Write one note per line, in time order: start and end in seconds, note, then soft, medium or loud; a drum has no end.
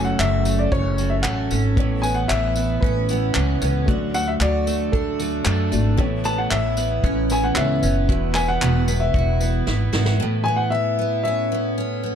0.00 0.15 F#1 medium
0.00 1.77 F#2 medium
0.00 0.18 F#3 medium
0.00 0.45 A3 medium
0.00 0.46 A3 medium
0.00 1.72 A3 medium
0.00 0.71 C#4 medium
0.00 0.72 C#4 medium
0.00 1.73 F#4 medium
0.00 1.74 C#5 medium
0.05 0.19 F#5 medium
0.19 0.68 F#1 loud
0.19 0.97 F#3 medium
0.19 1.83 F#4 medium
0.19 0.60 E5 medium
0.19 clap loud
0.45 1.25 A3 medium
0.45 0.98 A3 medium
0.45 tambourine medium
0.59 0.71 D5 medium
0.72 1.21 F#1 loud
0.72 1.51 C#4 medium
0.72 1.24 C#4 medium
0.72 1.13 C#5 medium
0.72 kick loud
0.98 1.77 F#3 medium
0.98 1.51 A3 medium
0.98 tambourine medium
1.10 1.15 E5 medium
1.22 1.49 A1 medium
1.22 2.04 A3 medium
1.22 2.07 C#4 medium
1.22 1.60 F#5 medium
1.22 clap loud
1.51 1.75 G#1 medium
1.51 2.04 A3 medium
1.51 2.07 C#4 medium
1.51 tambourine medium
1.75 2.26 A1 loud
1.75 3.88 A2 medium
1.75 2.29 E3 medium
1.75 3.83 B3 medium
1.75 3.84 A4 medium
1.75 kick loud
1.79 3.85 C#5 medium
2.02 2.55 B3 medium
2.02 2.56 B3 medium
2.02 2.16 G#5 loud
2.02 tambourine medium
2.15 2.28 F#5 medium
2.28 2.79 A1 medium
2.28 3.08 E3 medium
2.28 3.94 E4 medium
2.28 2.78 E5 loud
2.28 clap loud
2.56 3.35 B3 medium
2.56 3.09 B3 medium
2.56 tambourine medium
2.81 3.31 A1 loud
2.81 3.60 C#4 medium
2.81 3.36 C#4 medium
2.81 3.57 B4 medium
2.81 kick loud
3.09 3.88 E3 medium
3.09 3.61 B3 medium
3.09 tambourine medium
3.35 3.60 C#2 medium
3.35 3.94 B3 medium
3.35 3.94 C#4 medium
3.35 clap loud
3.62 3.86 C#2 medium
3.62 3.94 B3 medium
3.62 3.93 C#4 medium
3.62 tambourine medium
3.86 4.37 D2 medium
3.86 5.99 D3 medium
3.86 4.39 F#3 medium
3.86 5.68 A3 medium
3.86 5.68 F#4 medium
3.86 5.69 D5 medium
3.86 kick loud
4.14 4.67 A3 medium
4.14 4.28 F#5 loud
4.14 tambourine medium
4.28 4.33 E5 medium
4.41 4.89 D2 loud
4.41 5.18 F#3 medium
4.41 6.04 F#4 medium
4.41 4.95 D5 medium
4.41 clap loud
4.67 5.20 A3 medium
4.67 5.45 A3 medium
4.67 tambourine medium
4.92 5.42 D2 loud
4.92 5.70 D4 medium
4.92 5.44 D4 medium
4.92 5.68 A4 medium
4.92 kick loud
5.19 5.98 F#3 medium
5.19 5.71 A3 medium
5.19 tambourine medium
5.45 5.70 F#2 medium
5.45 6.24 A3 medium
5.45 6.04 D4 medium
5.45 clap loud
5.71 5.97 G#1 medium
5.71 5.98 A3 medium
5.71 6.23 A3 medium
5.71 6.03 D4 medium
5.71 5.98 F#4 soft
5.71 5.99 D5 medium
5.71 tambourine medium
5.97 8.09 A2 medium
5.97 6.51 E3 medium
5.97 7.52 B3 medium
5.97 7.53 A4 medium
5.97 7.54 C#5 medium
5.97 kick loud
6.24 6.77 B3 medium
6.24 6.39 A5 loud
6.24 tambourine medium
6.38 6.52 F#5 medium
6.50 7.00 A1 loud
6.50 7.30 E3 medium
6.50 8.61 E4 medium
6.50 7.00 E5 medium
6.50 clap loud
6.77 7.30 B3 medium
6.77 7.56 B3 medium
6.77 tambourine medium
7.04 7.53 A1 loud
7.04 7.56 C#4 medium
7.04 7.82 C#4 medium
7.04 kick loud
7.30 8.09 E3 medium
7.30 7.83 B3 medium
7.30 7.45 G#5 medium
7.30 tambourine medium
7.44 7.57 F#5 medium
7.56 7.81 C#2 medium
7.56 8.06 B3 soft
7.56 8.61 B3 medium
7.56 8.15 C#4 medium
7.56 8.09 A4 soft
7.56 8.10 C#5 medium
7.56 8.06 E5 medium
7.56 clap loud
7.83 8.09 F#1 medium
7.83 8.35 B3 medium
7.83 8.15 C#4 medium
7.83 tambourine medium
8.07 8.58 E1 loud
8.07 10.20 E2 medium
8.07 10.75 E3 medium
8.07 10.15 B3 medium
8.07 10.16 F#4 medium
8.07 10.17 E5 medium
8.07 kick loud
8.34 8.88 B3 medium
8.34 8.88 E4 medium
8.34 8.49 G#5 loud
8.34 clap medium
8.34 tambourine medium
8.48 8.97 F#5 loud
8.62 9.10 E1 loud
8.62 9.40 B3 medium
8.62 10.25 F#4 medium
8.62 clap loud
8.88 9.40 B3 medium
8.88 9.66 E4 medium
8.88 tambourine medium
9.00 9.89 E5 medium
9.14 9.63 E1 loud
9.14 9.67 E4 medium
9.14 9.92 F#4 medium
9.14 kick loud
9.41 10.75 B3 medium
9.41 9.92 B3 medium
9.41 tambourine medium
9.67 9.91 G#1 medium
9.67 10.75 E4 medium
9.67 10.72 E4 medium
9.67 snare medium
9.93 10.18 G#1 medium
9.93 10.45 B3 medium
9.93 10.25 F#4 medium
9.93 snare medium
10.06 snare medium
10.20 12.15 A2 medium
10.44 10.98 B3 medium
10.44 10.58 G#5 loud
10.56 10.70 F#5 medium
10.70 12.15 E4 medium
10.70 11.22 E5 medium
10.99 11.51 B3 medium
11.24 11.77 C#4 medium
11.24 11.99 E5 medium
11.52 12.02 B3 medium
11.78 12.15 C#4 medium
12.03 12.15 B3 medium